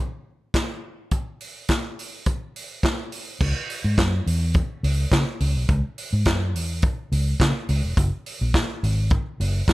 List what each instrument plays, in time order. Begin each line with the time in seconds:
0.54 kick, snare, clap, closed hi-hat
1.11 kick, closed hi-hat
1.40 open hi-hat
1.68 kick, snare, clap, closed hi-hat
1.99 open hi-hat
2.26 kick, closed hi-hat
2.56 open hi-hat
2.83 kick, snare, clap, closed hi-hat
3.12 open hi-hat
3.41 fingered electric bass C#2, kick, crash
3.70 open hi-hat
3.84 fingered electric bass G#2
3.97 fingered electric bass F#2, kick, snare, clap, closed hi-hat
4.26 fingered electric bass E2, open hi-hat
4.54 kick, closed hi-hat
4.83 fingered electric bass C#2, open hi-hat
5.12 fingered electric bass C#3, kick, snare, clap, closed hi-hat
5.40 fingered electric bass C#2, open hi-hat
5.56 fingered electric bass B1
5.69 fingered electric bass C#2, kick, closed hi-hat
5.98 open hi-hat
6.13 fingered electric bass G#2
6.25 fingered electric bass F#2, kick, snare, clap, closed hi-hat
6.54 fingered electric bass E2, open hi-hat
6.82 kick, closed hi-hat
7.12 fingered electric bass C#2, open hi-hat
7.40 fingered electric bass C#3, kick, snare, clap, closed hi-hat
7.69 fingered electric bass C#2, open hi-hat
7.84 fingered electric bass E1
7.97 fingered electric bass F#1, kick, closed hi-hat
8.26 open hi-hat
8.41 fingered electric bass A#1
8.54 kick, snare, clap, closed hi-hat
8.83 fingered electric bass G#1, open hi-hat
9.10 kick, closed hi-hat
9.40 fingered electric bass F#1, open hi-hat
9.68 fingered electric bass F#2, kick, snare, closed hi-hat